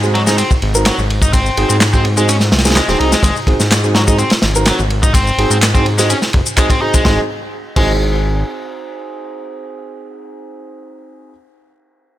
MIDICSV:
0, 0, Header, 1, 5, 480
1, 0, Start_track
1, 0, Tempo, 476190
1, 1346, Time_signature, 4, 2, 24, 8
1, 12282, End_track
2, 0, Start_track
2, 0, Title_t, "Grand piano"
2, 0, Program_c, 0, 0
2, 32, Note_on_c, 0, 66, 72
2, 33, Note_on_c, 0, 60, 79
2, 33, Note_on_c, 0, 63, 70
2, 33, Note_on_c, 0, 68, 85
2, 133, Note_off_c, 0, 60, 0
2, 133, Note_off_c, 0, 63, 0
2, 133, Note_off_c, 0, 66, 0
2, 133, Note_off_c, 0, 68, 0
2, 273, Note_on_c, 0, 63, 85
2, 273, Note_on_c, 0, 66, 83
2, 273, Note_on_c, 0, 68, 106
2, 274, Note_on_c, 0, 60, 91
2, 373, Note_off_c, 0, 60, 0
2, 373, Note_off_c, 0, 63, 0
2, 373, Note_off_c, 0, 66, 0
2, 373, Note_off_c, 0, 68, 0
2, 753, Note_on_c, 0, 60, 100
2, 753, Note_on_c, 0, 63, 90
2, 753, Note_on_c, 0, 66, 95
2, 753, Note_on_c, 0, 70, 112
2, 918, Note_off_c, 0, 60, 0
2, 918, Note_off_c, 0, 63, 0
2, 918, Note_off_c, 0, 66, 0
2, 918, Note_off_c, 0, 70, 0
2, 1587, Note_on_c, 0, 60, 85
2, 1587, Note_on_c, 0, 63, 82
2, 1587, Note_on_c, 0, 66, 80
2, 1587, Note_on_c, 0, 68, 96
2, 1758, Note_off_c, 0, 60, 0
2, 1758, Note_off_c, 0, 63, 0
2, 1758, Note_off_c, 0, 66, 0
2, 1758, Note_off_c, 0, 68, 0
2, 1951, Note_on_c, 0, 60, 72
2, 1951, Note_on_c, 0, 63, 70
2, 1951, Note_on_c, 0, 66, 68
2, 1953, Note_on_c, 0, 68, 84
2, 2052, Note_off_c, 0, 60, 0
2, 2052, Note_off_c, 0, 63, 0
2, 2052, Note_off_c, 0, 66, 0
2, 2053, Note_off_c, 0, 68, 0
2, 2190, Note_on_c, 0, 63, 91
2, 2191, Note_on_c, 0, 60, 100
2, 2191, Note_on_c, 0, 66, 96
2, 2191, Note_on_c, 0, 68, 114
2, 2291, Note_off_c, 0, 63, 0
2, 2292, Note_off_c, 0, 60, 0
2, 2292, Note_off_c, 0, 66, 0
2, 2292, Note_off_c, 0, 68, 0
2, 2670, Note_on_c, 0, 63, 92
2, 2671, Note_on_c, 0, 60, 98
2, 2671, Note_on_c, 0, 66, 91
2, 2671, Note_on_c, 0, 68, 107
2, 2772, Note_off_c, 0, 60, 0
2, 2772, Note_off_c, 0, 63, 0
2, 2772, Note_off_c, 0, 66, 0
2, 2772, Note_off_c, 0, 68, 0
2, 2909, Note_on_c, 0, 66, 80
2, 2910, Note_on_c, 0, 60, 81
2, 2910, Note_on_c, 0, 63, 78
2, 2911, Note_on_c, 0, 68, 95
2, 3008, Note_off_c, 0, 60, 0
2, 3008, Note_off_c, 0, 63, 0
2, 3008, Note_off_c, 0, 66, 0
2, 3009, Note_off_c, 0, 68, 0
2, 3025, Note_on_c, 0, 60, 85
2, 3025, Note_on_c, 0, 63, 78
2, 3025, Note_on_c, 0, 66, 78
2, 3025, Note_on_c, 0, 68, 95
2, 3135, Note_off_c, 0, 60, 0
2, 3135, Note_off_c, 0, 63, 0
2, 3135, Note_off_c, 0, 66, 0
2, 3135, Note_off_c, 0, 68, 0
2, 3504, Note_on_c, 0, 66, 78
2, 3504, Note_on_c, 0, 68, 91
2, 3505, Note_on_c, 0, 60, 81
2, 3505, Note_on_c, 0, 63, 76
2, 3615, Note_off_c, 0, 60, 0
2, 3615, Note_off_c, 0, 63, 0
2, 3615, Note_off_c, 0, 66, 0
2, 3615, Note_off_c, 0, 68, 0
2, 3869, Note_on_c, 0, 60, 83
2, 3869, Note_on_c, 0, 63, 71
2, 3869, Note_on_c, 0, 66, 71
2, 3869, Note_on_c, 0, 68, 84
2, 3971, Note_off_c, 0, 60, 0
2, 3971, Note_off_c, 0, 63, 0
2, 3971, Note_off_c, 0, 66, 0
2, 3971, Note_off_c, 0, 68, 0
2, 4108, Note_on_c, 0, 66, 86
2, 4109, Note_on_c, 0, 60, 93
2, 4109, Note_on_c, 0, 63, 88
2, 4109, Note_on_c, 0, 68, 99
2, 4211, Note_off_c, 0, 60, 0
2, 4211, Note_off_c, 0, 63, 0
2, 4211, Note_off_c, 0, 66, 0
2, 4211, Note_off_c, 0, 68, 0
2, 4592, Note_on_c, 0, 66, 97
2, 4593, Note_on_c, 0, 60, 100
2, 4593, Note_on_c, 0, 70, 118
2, 4594, Note_on_c, 0, 63, 93
2, 4757, Note_off_c, 0, 66, 0
2, 4758, Note_off_c, 0, 60, 0
2, 4758, Note_off_c, 0, 63, 0
2, 4758, Note_off_c, 0, 70, 0
2, 5428, Note_on_c, 0, 60, 87
2, 5428, Note_on_c, 0, 63, 80
2, 5428, Note_on_c, 0, 66, 78
2, 5428, Note_on_c, 0, 68, 98
2, 5598, Note_off_c, 0, 68, 0
2, 5599, Note_off_c, 0, 60, 0
2, 5599, Note_off_c, 0, 63, 0
2, 5599, Note_off_c, 0, 66, 0
2, 5791, Note_on_c, 0, 68, 81
2, 5792, Note_on_c, 0, 60, 74
2, 5792, Note_on_c, 0, 63, 68
2, 5792, Note_on_c, 0, 66, 69
2, 5892, Note_off_c, 0, 66, 0
2, 5892, Note_off_c, 0, 68, 0
2, 5893, Note_off_c, 0, 60, 0
2, 5893, Note_off_c, 0, 63, 0
2, 6033, Note_on_c, 0, 63, 96
2, 6033, Note_on_c, 0, 66, 98
2, 6034, Note_on_c, 0, 60, 106
2, 6035, Note_on_c, 0, 68, 114
2, 6133, Note_off_c, 0, 60, 0
2, 6133, Note_off_c, 0, 63, 0
2, 6133, Note_off_c, 0, 66, 0
2, 6134, Note_off_c, 0, 68, 0
2, 6627, Note_on_c, 0, 60, 81
2, 6627, Note_on_c, 0, 63, 72
2, 6628, Note_on_c, 0, 66, 76
2, 6628, Note_on_c, 0, 68, 90
2, 6736, Note_off_c, 0, 60, 0
2, 6736, Note_off_c, 0, 63, 0
2, 6736, Note_off_c, 0, 66, 0
2, 6736, Note_off_c, 0, 68, 0
2, 6871, Note_on_c, 0, 68, 90
2, 6872, Note_on_c, 0, 60, 75
2, 6872, Note_on_c, 0, 63, 73
2, 6872, Note_on_c, 0, 66, 70
2, 7095, Note_off_c, 0, 60, 0
2, 7095, Note_off_c, 0, 63, 0
2, 7095, Note_off_c, 0, 66, 0
2, 7095, Note_off_c, 0, 68, 0
2, 7110, Note_on_c, 0, 60, 86
2, 7110, Note_on_c, 0, 63, 78
2, 7110, Note_on_c, 0, 66, 82
2, 7110, Note_on_c, 0, 68, 94
2, 7246, Note_off_c, 0, 60, 0
2, 7246, Note_off_c, 0, 63, 0
2, 7246, Note_off_c, 0, 66, 0
2, 7246, Note_off_c, 0, 68, 0
2, 7830, Note_on_c, 0, 66, 81
2, 7831, Note_on_c, 0, 60, 89
2, 7831, Note_on_c, 0, 63, 83
2, 7832, Note_on_c, 0, 68, 98
2, 11392, Note_off_c, 0, 60, 0
2, 11392, Note_off_c, 0, 66, 0
2, 11393, Note_off_c, 0, 63, 0
2, 11394, Note_off_c, 0, 68, 0
2, 12282, End_track
3, 0, Start_track
3, 0, Title_t, "Overdriven electric guitar"
3, 0, Program_c, 1, 29
3, 146, Note_on_c, 1, 54, 105
3, 210, Note_off_c, 1, 54, 0
3, 272, Note_on_c, 1, 63, 76
3, 375, Note_off_c, 1, 63, 0
3, 383, Note_on_c, 1, 60, 84
3, 491, Note_off_c, 1, 60, 0
3, 863, Note_on_c, 1, 54, 84
3, 983, Note_off_c, 1, 54, 0
3, 1230, Note_on_c, 1, 63, 75
3, 1329, Note_off_c, 1, 63, 0
3, 1345, Note_on_c, 1, 60, 84
3, 1696, Note_off_c, 1, 60, 0
3, 1708, Note_on_c, 1, 60, 83
3, 1768, Note_off_c, 1, 60, 0
3, 1947, Note_on_c, 1, 60, 101
3, 2047, Note_off_c, 1, 60, 0
3, 2189, Note_on_c, 1, 56, 103
3, 2288, Note_off_c, 1, 56, 0
3, 2303, Note_on_c, 1, 61, 103
3, 2368, Note_off_c, 1, 61, 0
3, 2780, Note_on_c, 1, 56, 110
3, 2890, Note_off_c, 1, 56, 0
3, 2908, Note_on_c, 1, 60, 101
3, 3008, Note_off_c, 1, 60, 0
3, 3020, Note_on_c, 1, 63, 77
3, 3136, Note_off_c, 1, 63, 0
3, 3145, Note_on_c, 1, 56, 104
3, 3246, Note_off_c, 1, 56, 0
3, 3260, Note_on_c, 1, 56, 81
3, 3370, Note_off_c, 1, 56, 0
3, 3981, Note_on_c, 1, 54, 110
3, 4047, Note_off_c, 1, 54, 0
3, 4108, Note_on_c, 1, 63, 77
3, 4213, Note_off_c, 1, 63, 0
3, 4221, Note_on_c, 1, 60, 81
3, 4330, Note_off_c, 1, 60, 0
3, 4702, Note_on_c, 1, 54, 87
3, 4823, Note_off_c, 1, 54, 0
3, 5070, Note_on_c, 1, 63, 76
3, 5169, Note_off_c, 1, 63, 0
3, 5183, Note_on_c, 1, 60, 83
3, 5537, Note_off_c, 1, 60, 0
3, 5552, Note_on_c, 1, 60, 82
3, 5611, Note_off_c, 1, 60, 0
3, 5789, Note_on_c, 1, 60, 103
3, 5888, Note_off_c, 1, 60, 0
3, 6031, Note_on_c, 1, 56, 101
3, 6129, Note_off_c, 1, 56, 0
3, 6148, Note_on_c, 1, 61, 103
3, 6211, Note_off_c, 1, 61, 0
3, 6628, Note_on_c, 1, 56, 106
3, 6733, Note_off_c, 1, 56, 0
3, 6755, Note_on_c, 1, 60, 107
3, 6851, Note_off_c, 1, 60, 0
3, 6870, Note_on_c, 1, 63, 79
3, 6980, Note_off_c, 1, 63, 0
3, 6996, Note_on_c, 1, 56, 102
3, 7092, Note_off_c, 1, 56, 0
3, 7114, Note_on_c, 1, 56, 91
3, 7248, Note_off_c, 1, 56, 0
3, 7829, Note_on_c, 1, 56, 97
3, 7965, Note_off_c, 1, 56, 0
3, 12282, End_track
4, 0, Start_track
4, 0, Title_t, "Analog synth bass"
4, 0, Program_c, 2, 38
4, 0, Note_on_c, 2, 44, 94
4, 438, Note_off_c, 2, 44, 0
4, 632, Note_on_c, 2, 32, 102
4, 917, Note_off_c, 2, 32, 0
4, 993, Note_on_c, 2, 32, 104
4, 1516, Note_off_c, 2, 32, 0
4, 1589, Note_on_c, 2, 32, 89
4, 1665, Note_off_c, 2, 32, 0
4, 1713, Note_on_c, 2, 44, 95
4, 2544, Note_on_c, 2, 36, 84
4, 2559, Note_off_c, 2, 44, 0
4, 2833, Note_off_c, 2, 36, 0
4, 2907, Note_on_c, 2, 27, 96
4, 2980, Note_off_c, 2, 27, 0
4, 3027, Note_on_c, 2, 36, 98
4, 3178, Note_off_c, 2, 36, 0
4, 3253, Note_on_c, 2, 32, 101
4, 3337, Note_off_c, 2, 32, 0
4, 3499, Note_on_c, 2, 32, 90
4, 3580, Note_off_c, 2, 32, 0
4, 3630, Note_on_c, 2, 44, 99
4, 4274, Note_off_c, 2, 44, 0
4, 4468, Note_on_c, 2, 32, 100
4, 4755, Note_off_c, 2, 32, 0
4, 4831, Note_on_c, 2, 32, 106
4, 5356, Note_off_c, 2, 32, 0
4, 5422, Note_on_c, 2, 32, 93
4, 5501, Note_off_c, 2, 32, 0
4, 5549, Note_on_c, 2, 44, 93
4, 6193, Note_off_c, 2, 44, 0
4, 6394, Note_on_c, 2, 30, 83
4, 6467, Note_off_c, 2, 30, 0
4, 7108, Note_on_c, 2, 32, 98
4, 7245, Note_off_c, 2, 32, 0
4, 7827, Note_on_c, 2, 32, 98
4, 8506, Note_off_c, 2, 32, 0
4, 12282, End_track
5, 0, Start_track
5, 0, Title_t, "Drums"
5, 32, Note_on_c, 9, 82, 31
5, 132, Note_off_c, 9, 82, 0
5, 151, Note_on_c, 9, 51, 72
5, 252, Note_off_c, 9, 51, 0
5, 270, Note_on_c, 9, 82, 60
5, 273, Note_on_c, 9, 38, 60
5, 371, Note_off_c, 9, 82, 0
5, 374, Note_off_c, 9, 38, 0
5, 383, Note_on_c, 9, 51, 94
5, 386, Note_on_c, 9, 82, 52
5, 484, Note_off_c, 9, 51, 0
5, 487, Note_off_c, 9, 82, 0
5, 512, Note_on_c, 9, 36, 101
5, 512, Note_on_c, 9, 82, 31
5, 613, Note_off_c, 9, 36, 0
5, 613, Note_off_c, 9, 82, 0
5, 625, Note_on_c, 9, 51, 64
5, 726, Note_off_c, 9, 51, 0
5, 751, Note_on_c, 9, 82, 62
5, 852, Note_off_c, 9, 82, 0
5, 863, Note_on_c, 9, 51, 95
5, 867, Note_on_c, 9, 39, 102
5, 867, Note_on_c, 9, 82, 47
5, 869, Note_on_c, 9, 38, 124
5, 964, Note_off_c, 9, 51, 0
5, 967, Note_off_c, 9, 39, 0
5, 967, Note_off_c, 9, 82, 0
5, 969, Note_off_c, 9, 38, 0
5, 992, Note_on_c, 9, 82, 29
5, 1093, Note_off_c, 9, 82, 0
5, 1111, Note_on_c, 9, 51, 69
5, 1212, Note_off_c, 9, 51, 0
5, 1226, Note_on_c, 9, 36, 91
5, 1231, Note_on_c, 9, 82, 65
5, 1327, Note_off_c, 9, 36, 0
5, 1332, Note_off_c, 9, 82, 0
5, 1343, Note_on_c, 9, 51, 100
5, 1346, Note_on_c, 9, 36, 108
5, 1346, Note_on_c, 9, 82, 52
5, 1444, Note_off_c, 9, 51, 0
5, 1446, Note_off_c, 9, 82, 0
5, 1447, Note_off_c, 9, 36, 0
5, 1472, Note_on_c, 9, 82, 31
5, 1573, Note_off_c, 9, 82, 0
5, 1584, Note_on_c, 9, 51, 75
5, 1685, Note_off_c, 9, 51, 0
5, 1710, Note_on_c, 9, 82, 61
5, 1811, Note_off_c, 9, 82, 0
5, 1819, Note_on_c, 9, 38, 127
5, 1823, Note_on_c, 9, 51, 94
5, 1826, Note_on_c, 9, 39, 102
5, 1826, Note_on_c, 9, 82, 55
5, 1920, Note_off_c, 9, 38, 0
5, 1923, Note_off_c, 9, 51, 0
5, 1926, Note_off_c, 9, 39, 0
5, 1926, Note_off_c, 9, 82, 0
5, 1949, Note_on_c, 9, 82, 31
5, 1952, Note_on_c, 9, 36, 97
5, 2050, Note_off_c, 9, 82, 0
5, 2052, Note_off_c, 9, 36, 0
5, 2062, Note_on_c, 9, 51, 73
5, 2163, Note_off_c, 9, 51, 0
5, 2188, Note_on_c, 9, 82, 62
5, 2289, Note_off_c, 9, 82, 0
5, 2304, Note_on_c, 9, 82, 54
5, 2305, Note_on_c, 9, 51, 91
5, 2404, Note_off_c, 9, 82, 0
5, 2406, Note_off_c, 9, 51, 0
5, 2421, Note_on_c, 9, 38, 46
5, 2429, Note_on_c, 9, 82, 31
5, 2522, Note_off_c, 9, 38, 0
5, 2530, Note_off_c, 9, 82, 0
5, 2540, Note_on_c, 9, 38, 89
5, 2542, Note_on_c, 9, 51, 63
5, 2605, Note_off_c, 9, 38, 0
5, 2605, Note_off_c, 9, 51, 0
5, 2605, Note_on_c, 9, 38, 91
5, 2605, Note_on_c, 9, 51, 76
5, 2669, Note_on_c, 9, 82, 61
5, 2671, Note_off_c, 9, 51, 0
5, 2671, Note_on_c, 9, 51, 67
5, 2672, Note_off_c, 9, 38, 0
5, 2672, Note_on_c, 9, 38, 88
5, 2723, Note_off_c, 9, 51, 0
5, 2723, Note_on_c, 9, 51, 71
5, 2726, Note_off_c, 9, 38, 0
5, 2726, Note_on_c, 9, 38, 95
5, 2770, Note_off_c, 9, 82, 0
5, 2778, Note_off_c, 9, 51, 0
5, 2778, Note_on_c, 9, 51, 95
5, 2779, Note_off_c, 9, 38, 0
5, 2779, Note_on_c, 9, 38, 118
5, 2783, Note_on_c, 9, 39, 99
5, 2783, Note_on_c, 9, 82, 49
5, 2879, Note_off_c, 9, 51, 0
5, 2880, Note_off_c, 9, 38, 0
5, 2883, Note_off_c, 9, 39, 0
5, 2883, Note_off_c, 9, 82, 0
5, 2908, Note_on_c, 9, 82, 29
5, 2909, Note_on_c, 9, 38, 38
5, 3009, Note_off_c, 9, 82, 0
5, 3010, Note_off_c, 9, 38, 0
5, 3029, Note_on_c, 9, 51, 69
5, 3130, Note_off_c, 9, 51, 0
5, 3148, Note_on_c, 9, 82, 63
5, 3150, Note_on_c, 9, 38, 59
5, 3249, Note_off_c, 9, 82, 0
5, 3251, Note_off_c, 9, 38, 0
5, 3254, Note_on_c, 9, 36, 120
5, 3264, Note_on_c, 9, 82, 53
5, 3265, Note_on_c, 9, 51, 101
5, 3354, Note_off_c, 9, 36, 0
5, 3365, Note_off_c, 9, 82, 0
5, 3366, Note_off_c, 9, 51, 0
5, 3390, Note_on_c, 9, 82, 33
5, 3490, Note_off_c, 9, 82, 0
5, 3497, Note_on_c, 9, 36, 108
5, 3505, Note_on_c, 9, 51, 69
5, 3598, Note_off_c, 9, 36, 0
5, 3606, Note_off_c, 9, 51, 0
5, 3626, Note_on_c, 9, 38, 53
5, 3629, Note_on_c, 9, 82, 64
5, 3727, Note_off_c, 9, 38, 0
5, 3730, Note_off_c, 9, 82, 0
5, 3742, Note_on_c, 9, 51, 86
5, 3745, Note_on_c, 9, 38, 124
5, 3745, Note_on_c, 9, 39, 104
5, 3745, Note_on_c, 9, 82, 53
5, 3843, Note_off_c, 9, 51, 0
5, 3845, Note_off_c, 9, 39, 0
5, 3845, Note_off_c, 9, 82, 0
5, 3846, Note_off_c, 9, 38, 0
5, 3868, Note_on_c, 9, 82, 32
5, 3968, Note_off_c, 9, 82, 0
5, 3979, Note_on_c, 9, 38, 105
5, 3986, Note_on_c, 9, 51, 77
5, 4080, Note_off_c, 9, 38, 0
5, 4087, Note_off_c, 9, 51, 0
5, 4108, Note_on_c, 9, 82, 64
5, 4111, Note_on_c, 9, 36, 96
5, 4209, Note_off_c, 9, 82, 0
5, 4212, Note_off_c, 9, 36, 0
5, 4216, Note_on_c, 9, 51, 61
5, 4224, Note_on_c, 9, 82, 54
5, 4317, Note_off_c, 9, 51, 0
5, 4325, Note_off_c, 9, 82, 0
5, 4334, Note_on_c, 9, 51, 84
5, 4349, Note_on_c, 9, 38, 113
5, 4350, Note_on_c, 9, 82, 31
5, 4435, Note_off_c, 9, 51, 0
5, 4450, Note_off_c, 9, 38, 0
5, 4451, Note_off_c, 9, 82, 0
5, 4455, Note_on_c, 9, 38, 118
5, 4459, Note_on_c, 9, 51, 80
5, 4555, Note_off_c, 9, 38, 0
5, 4560, Note_off_c, 9, 51, 0
5, 4590, Note_on_c, 9, 82, 64
5, 4691, Note_off_c, 9, 82, 0
5, 4691, Note_on_c, 9, 51, 86
5, 4700, Note_on_c, 9, 38, 122
5, 4705, Note_on_c, 9, 39, 100
5, 4705, Note_on_c, 9, 82, 50
5, 4792, Note_off_c, 9, 51, 0
5, 4801, Note_off_c, 9, 38, 0
5, 4806, Note_off_c, 9, 39, 0
5, 4806, Note_off_c, 9, 82, 0
5, 4830, Note_on_c, 9, 82, 29
5, 4931, Note_off_c, 9, 82, 0
5, 4942, Note_on_c, 9, 51, 64
5, 5043, Note_off_c, 9, 51, 0
5, 5071, Note_on_c, 9, 36, 98
5, 5072, Note_on_c, 9, 82, 63
5, 5172, Note_off_c, 9, 36, 0
5, 5173, Note_off_c, 9, 82, 0
5, 5181, Note_on_c, 9, 36, 113
5, 5185, Note_on_c, 9, 51, 101
5, 5186, Note_on_c, 9, 82, 58
5, 5282, Note_off_c, 9, 36, 0
5, 5286, Note_off_c, 9, 51, 0
5, 5287, Note_off_c, 9, 82, 0
5, 5312, Note_on_c, 9, 82, 34
5, 5413, Note_off_c, 9, 82, 0
5, 5427, Note_on_c, 9, 51, 70
5, 5528, Note_off_c, 9, 51, 0
5, 5552, Note_on_c, 9, 82, 65
5, 5653, Note_off_c, 9, 82, 0
5, 5665, Note_on_c, 9, 51, 89
5, 5667, Note_on_c, 9, 39, 106
5, 5667, Note_on_c, 9, 82, 56
5, 5672, Note_on_c, 9, 38, 108
5, 5766, Note_off_c, 9, 51, 0
5, 5768, Note_off_c, 9, 39, 0
5, 5768, Note_off_c, 9, 82, 0
5, 5773, Note_off_c, 9, 38, 0
5, 5792, Note_on_c, 9, 36, 99
5, 5792, Note_on_c, 9, 82, 33
5, 5893, Note_off_c, 9, 36, 0
5, 5893, Note_off_c, 9, 82, 0
5, 5906, Note_on_c, 9, 51, 71
5, 6006, Note_off_c, 9, 51, 0
5, 6033, Note_on_c, 9, 82, 66
5, 6038, Note_on_c, 9, 38, 41
5, 6133, Note_off_c, 9, 82, 0
5, 6138, Note_off_c, 9, 38, 0
5, 6147, Note_on_c, 9, 82, 56
5, 6148, Note_on_c, 9, 51, 84
5, 6248, Note_off_c, 9, 51, 0
5, 6248, Note_off_c, 9, 82, 0
5, 6269, Note_on_c, 9, 38, 45
5, 6273, Note_on_c, 9, 82, 31
5, 6369, Note_off_c, 9, 38, 0
5, 6374, Note_off_c, 9, 82, 0
5, 6380, Note_on_c, 9, 51, 74
5, 6393, Note_on_c, 9, 36, 103
5, 6481, Note_off_c, 9, 51, 0
5, 6493, Note_off_c, 9, 36, 0
5, 6513, Note_on_c, 9, 82, 65
5, 6614, Note_off_c, 9, 82, 0
5, 6626, Note_on_c, 9, 51, 62
5, 6627, Note_on_c, 9, 36, 91
5, 6628, Note_on_c, 9, 39, 99
5, 6628, Note_on_c, 9, 82, 53
5, 6727, Note_off_c, 9, 51, 0
5, 6728, Note_off_c, 9, 36, 0
5, 6729, Note_off_c, 9, 39, 0
5, 6729, Note_off_c, 9, 82, 0
5, 6751, Note_on_c, 9, 36, 94
5, 6754, Note_on_c, 9, 51, 76
5, 6754, Note_on_c, 9, 82, 33
5, 6852, Note_off_c, 9, 36, 0
5, 6854, Note_off_c, 9, 82, 0
5, 6855, Note_off_c, 9, 51, 0
5, 6995, Note_on_c, 9, 82, 65
5, 6996, Note_on_c, 9, 51, 56
5, 6997, Note_on_c, 9, 36, 98
5, 7096, Note_off_c, 9, 82, 0
5, 7097, Note_off_c, 9, 51, 0
5, 7098, Note_off_c, 9, 36, 0
5, 7105, Note_on_c, 9, 38, 91
5, 7107, Note_on_c, 9, 36, 113
5, 7206, Note_off_c, 9, 38, 0
5, 7207, Note_off_c, 9, 36, 0
5, 7825, Note_on_c, 9, 49, 96
5, 7826, Note_on_c, 9, 36, 112
5, 7926, Note_off_c, 9, 49, 0
5, 7927, Note_off_c, 9, 36, 0
5, 12282, End_track
0, 0, End_of_file